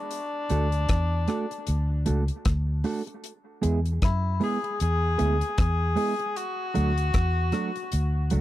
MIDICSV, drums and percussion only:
0, 0, Header, 1, 2, 480
1, 0, Start_track
1, 0, Tempo, 781250
1, 66, Time_signature, 4, 2, 24, 8
1, 5166, End_track
2, 0, Start_track
2, 0, Title_t, "Drums"
2, 65, Note_on_c, 9, 42, 97
2, 127, Note_off_c, 9, 42, 0
2, 304, Note_on_c, 9, 42, 72
2, 365, Note_off_c, 9, 42, 0
2, 443, Note_on_c, 9, 42, 52
2, 505, Note_off_c, 9, 42, 0
2, 544, Note_on_c, 9, 42, 94
2, 548, Note_on_c, 9, 36, 101
2, 549, Note_on_c, 9, 37, 112
2, 605, Note_off_c, 9, 42, 0
2, 609, Note_off_c, 9, 36, 0
2, 611, Note_off_c, 9, 37, 0
2, 784, Note_on_c, 9, 42, 68
2, 790, Note_on_c, 9, 37, 63
2, 845, Note_off_c, 9, 42, 0
2, 851, Note_off_c, 9, 37, 0
2, 928, Note_on_c, 9, 42, 56
2, 989, Note_off_c, 9, 42, 0
2, 1024, Note_on_c, 9, 42, 102
2, 1085, Note_off_c, 9, 42, 0
2, 1264, Note_on_c, 9, 42, 86
2, 1326, Note_off_c, 9, 42, 0
2, 1402, Note_on_c, 9, 42, 54
2, 1463, Note_off_c, 9, 42, 0
2, 1505, Note_on_c, 9, 42, 88
2, 1509, Note_on_c, 9, 36, 115
2, 1509, Note_on_c, 9, 37, 115
2, 1567, Note_off_c, 9, 42, 0
2, 1570, Note_off_c, 9, 37, 0
2, 1571, Note_off_c, 9, 36, 0
2, 1744, Note_on_c, 9, 46, 79
2, 1806, Note_off_c, 9, 46, 0
2, 1888, Note_on_c, 9, 42, 53
2, 1949, Note_off_c, 9, 42, 0
2, 1989, Note_on_c, 9, 42, 89
2, 2050, Note_off_c, 9, 42, 0
2, 2230, Note_on_c, 9, 42, 77
2, 2291, Note_off_c, 9, 42, 0
2, 2368, Note_on_c, 9, 42, 51
2, 2430, Note_off_c, 9, 42, 0
2, 2469, Note_on_c, 9, 42, 91
2, 2471, Note_on_c, 9, 36, 103
2, 2474, Note_on_c, 9, 37, 112
2, 2531, Note_off_c, 9, 42, 0
2, 2532, Note_off_c, 9, 36, 0
2, 2536, Note_off_c, 9, 37, 0
2, 2707, Note_on_c, 9, 46, 48
2, 2769, Note_off_c, 9, 46, 0
2, 2852, Note_on_c, 9, 42, 62
2, 2913, Note_off_c, 9, 42, 0
2, 2950, Note_on_c, 9, 42, 96
2, 3011, Note_off_c, 9, 42, 0
2, 3188, Note_on_c, 9, 42, 76
2, 3249, Note_off_c, 9, 42, 0
2, 3325, Note_on_c, 9, 42, 55
2, 3386, Note_off_c, 9, 42, 0
2, 3427, Note_on_c, 9, 42, 92
2, 3430, Note_on_c, 9, 36, 124
2, 3430, Note_on_c, 9, 37, 104
2, 3488, Note_off_c, 9, 42, 0
2, 3491, Note_off_c, 9, 36, 0
2, 3492, Note_off_c, 9, 37, 0
2, 3665, Note_on_c, 9, 46, 85
2, 3726, Note_off_c, 9, 46, 0
2, 3805, Note_on_c, 9, 42, 51
2, 3867, Note_off_c, 9, 42, 0
2, 3910, Note_on_c, 9, 42, 97
2, 3972, Note_off_c, 9, 42, 0
2, 4149, Note_on_c, 9, 42, 75
2, 4210, Note_off_c, 9, 42, 0
2, 4286, Note_on_c, 9, 42, 56
2, 4347, Note_off_c, 9, 42, 0
2, 4385, Note_on_c, 9, 42, 92
2, 4387, Note_on_c, 9, 36, 103
2, 4390, Note_on_c, 9, 37, 106
2, 4447, Note_off_c, 9, 42, 0
2, 4449, Note_off_c, 9, 36, 0
2, 4452, Note_off_c, 9, 37, 0
2, 4621, Note_on_c, 9, 42, 70
2, 4627, Note_on_c, 9, 37, 57
2, 4682, Note_off_c, 9, 42, 0
2, 4688, Note_off_c, 9, 37, 0
2, 4765, Note_on_c, 9, 42, 58
2, 4827, Note_off_c, 9, 42, 0
2, 4864, Note_on_c, 9, 42, 103
2, 4925, Note_off_c, 9, 42, 0
2, 5100, Note_on_c, 9, 42, 81
2, 5162, Note_off_c, 9, 42, 0
2, 5166, End_track
0, 0, End_of_file